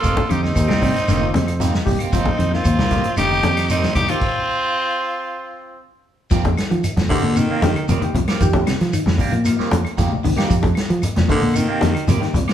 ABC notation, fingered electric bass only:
X:1
M:4/4
L:1/16
Q:1/4=114
K:Cdor
V:1 name="Fingered electric bass" clef=bass
F,,, z F,,2 E,, C,,2 z F,,,2 F,,4 C,, z | F,,, z F,,2 E,, C,,2 z F,,,2 F,,4 C,, z | z16 | F,,2 z F, z F,, z B,,2 z F,, z F,, z C,, z |
F,,2 z F, z F,, z B,,2 z F,, z F,, z C,, z | F,,2 z F, z F,, z B,,2 z F,, z F,, z C,, z |]